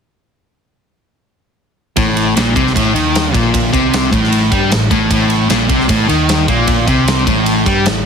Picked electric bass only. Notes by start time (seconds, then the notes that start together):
1.97 A1
2.37 A#1
2.56 C2
2.76 A1
2.95 D#2
3.34 A#1
3.73 C2
4.12 A1
4.52 G2
4.71 A1
4.91 A1
5.11 A1
5.51 A#1
5.70 C2
5.89 A1
6.10 D#2
6.48 A#1
6.88 C2
7.27 A1
7.66 G2
7.86 A1